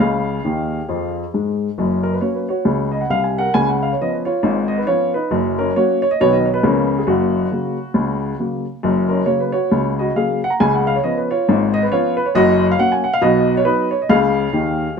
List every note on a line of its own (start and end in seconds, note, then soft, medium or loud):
0.00 0.39 C#2 medium
0.00 0.38 C#3 medium
0.00 1.30 G#4 soft
0.00 1.14 F5 medium
0.45 0.79 D#2 medium
0.45 0.79 D#3 medium
0.89 1.23 F2 medium
0.89 1.23 F3 medium
1.34 1.68 G#2 soft
1.34 1.68 G#3 soft
1.78 2.16 F#1 medium
1.78 2.16 F#2 medium
2.03 2.13 A#4 medium
2.13 2.23 B4 soft
2.21 2.46 F#3 soft
2.21 2.46 A#3 soft
2.21 2.47 C#4 soft
2.21 2.35 C#5 medium
2.35 2.49 B4 soft
2.49 2.91 F#4 soft
2.49 2.87 C#5 medium
2.65 3.04 C#2 medium
2.65 3.04 C#3 medium
2.91 3.02 D#5 medium
3.01 3.11 F#5 soft
3.10 3.46 C2 soft
3.10 3.46 C3 medium
3.10 3.24 F5 medium
3.24 3.37 G#5 soft
3.38 3.56 A#4 medium
3.38 3.53 F#5 medium
3.54 3.93 C#2 medium
3.54 3.93 C#3 medium
3.54 3.68 G#5 medium
3.69 3.82 F#5 medium
3.83 3.91 F5 medium
3.93 4.01 C#5 soft
4.01 4.25 F3 soft
4.01 4.25 B3 soft
4.01 4.26 C#4 soft
4.01 4.14 D#5 medium
4.13 4.26 B4 soft
4.25 4.67 F4 medium
4.25 4.63 C#5 medium
4.43 4.81 G#1 medium
4.43 4.81 G#2 medium
4.68 4.78 D#5 medium
4.78 4.87 B4 medium
4.87 5.12 F3 soft
4.87 5.12 B3 soft
4.87 5.12 C#4 soft
4.87 5.13 F4 medium
4.87 5.10 C#5 medium
5.14 5.32 D#4 medium
5.14 5.29 B4 medium
5.31 5.69 F#1 medium
5.31 5.69 F#2 medium
5.59 5.76 C#4 medium
5.59 5.74 A#4 medium
5.76 6.00 F#3 soft
5.76 6.01 A#3 soft
5.76 6.01 C#4 soft
5.76 6.01 F#4 medium
5.76 5.98 C#5 medium
6.02 6.11 C#5 medium
6.11 6.20 D#5 medium
6.20 6.58 B1 medium
6.20 6.58 B2 medium
6.20 6.45 D#3 soft
6.20 6.45 F#3 soft
6.20 6.45 B3 soft
6.20 6.34 C#5 medium
6.33 6.46 D#5 medium
6.45 6.55 C#5 medium
6.54 6.63 B4 medium
6.63 7.01 C#2 medium
6.63 7.01 C#3 medium
6.63 6.88 F3 soft
6.63 6.89 B3 soft
6.63 6.97 C#4 medium
6.63 6.94 A#4 medium
6.99 7.08 G#4 medium
7.07 7.45 F#1 medium
7.07 7.45 F#2 medium
7.07 7.51 A#3 soft
7.07 8.42 F#4 medium
7.52 7.76 C#3 soft
7.52 7.76 F#3 soft
7.52 7.77 A#3 soft
7.94 8.32 C#2 medium
7.94 8.33 C#3 medium
8.40 8.64 C#3 soft
8.40 8.64 F#3 soft
8.40 8.64 A#3 soft
8.83 9.21 F#1 medium
8.83 9.21 F#2 medium
9.09 9.27 C#4 soft
9.09 9.24 A#4 medium
9.26 9.50 C#3 soft
9.26 9.50 F#3 soft
9.26 9.51 A#3 soft
9.26 9.40 C#5 medium
9.40 9.54 B4 soft
9.52 9.95 F#4 soft
9.52 9.90 C#5 medium
9.71 10.09 C#2 medium
9.71 10.09 C#3 medium
9.99 10.16 F#4 medium
9.99 10.13 D#5 medium
10.16 10.40 C#3 soft
10.16 10.40 F#3 soft
10.16 10.40 A#3 soft
10.16 10.41 G#4 medium
10.16 10.38 F5 medium
10.44 10.52 F#5 medium
10.50 10.59 A#5 medium
10.60 10.97 C#2 medium
10.60 10.97 C#3 medium
10.60 10.73 G#5 medium
10.74 10.86 F#5 soft
10.87 10.95 F5 medium
10.96 11.04 C#5 medium
11.04 11.28 F3 soft
11.04 11.28 B3 soft
11.04 11.28 C#4 soft
11.04 11.16 D#5 medium
11.17 11.30 B4 soft
11.31 11.71 F4 medium
11.31 11.67 C#5 medium
11.49 11.85 G#1 medium
11.49 11.85 G#2 medium
11.74 11.82 D#5 medium
11.83 11.91 B4 medium
11.91 12.15 F3 soft
11.91 12.15 B3 soft
11.91 12.16 C#4 medium
11.91 12.16 F4 medium
11.91 12.13 C#5 medium
12.17 12.26 B4 medium
12.26 12.34 C#5 medium
12.35 12.72 F#1 medium
12.35 12.72 F#2 medium
12.35 12.68 F#4 medium
12.35 12.65 D#5 loud
12.71 12.79 F5 medium
12.79 13.03 F#3 medium
12.79 13.03 A#3 soft
12.79 13.03 C#4 soft
12.79 12.92 F#5 medium
12.92 13.04 G#5 medium
13.04 13.13 F#5 medium
13.13 13.22 F5 medium
13.21 13.59 B1 medium
13.21 13.59 B2 medium
13.21 13.55 F#4 medium
13.21 13.51 D#5 medium
13.57 13.66 C#5 medium
13.65 13.90 F#3 soft
13.65 13.90 B3 soft
13.65 13.90 D#4 medium
13.65 13.87 B4 medium
13.91 14.00 C#5 medium
14.02 14.10 D#5 medium
14.09 14.47 C#2 medium
14.09 14.47 C#3 medium
14.09 15.00 G#4 medium
14.09 15.00 F5 medium
14.53 14.86 D#2 medium
14.53 14.86 D#3 medium